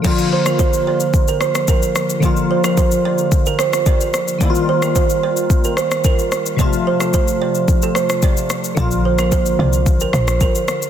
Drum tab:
CC |x---------------|----------------|----------------|----------------|
SH |xx-xxx-xxxxxxxxx|xx-xxx-xxxxxxxxx|xx-xxx-xxxxxxxxx|xx-xxx-xxxxxxxxx|
SD |---r------rr--r-|---r------rr--r-|---r------rr--r-|---r------rr--r-|
BD |o---o---o---o---|o---o---o---o---|o---o---o---o---|o---o---o---o---|

CC |----------------|
SH |xx-xxx-xxxxxxxxx|
SD |---r------rr--r-|
BD |o---o---o---o---|